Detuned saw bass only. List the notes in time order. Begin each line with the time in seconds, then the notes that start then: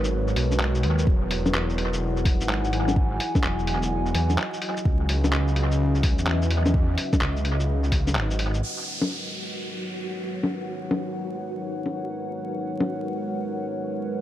Already playing: G#1
0.36 B1
0.84 D#2
1.07 E1
2.41 G#1
3.44 E1
4.15 E2
4.86 C#2
6.18 E2
7.22 C#2
8.16 G#1